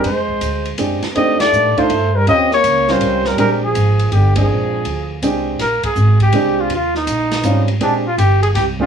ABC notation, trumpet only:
X:1
M:3/4
L:1/8
Q:"Swing" 1/4=162
K:Bbmix
V:1 name="Trumpet"
c4 z2 | e d2 c2 B | e _d2 c2 B | B A3 G A- |
A4 z2 | B A2 G2 F | F E4 z | D F G A G F |]